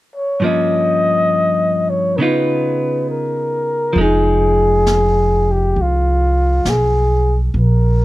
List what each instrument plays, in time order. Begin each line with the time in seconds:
0.15 flugelhorn C#5
0.40 hollow-body jazz guitar G2 F3 A#3
0.44 hollow-body jazz guitar C#4, flugelhorn D#5
1.89 flugelhorn C#5
2.16 hollow-body jazz guitar C#3 B3, flugelhorn A#4
2.21 hollow-body jazz guitar D#4 F4, flugelhorn B4
3.10 flugelhorn A#4
3.93 upright bass F1, hollow-body jazz guitar F3, brush sweep
3.98 hollow-body jazz guitar G#3 D#4, flugelhorn G#4
4.86 snare, hi-hat pedal
5.51 flugelhorn G4
5.76 upright bass C2, brush sweep
5.82 flugelhorn F4
6.65 upright bass B1, flugelhorn G#4, snare, hi-hat pedal
7.54 upright bass A#1, brush sweep
7.60 flugelhorn A#4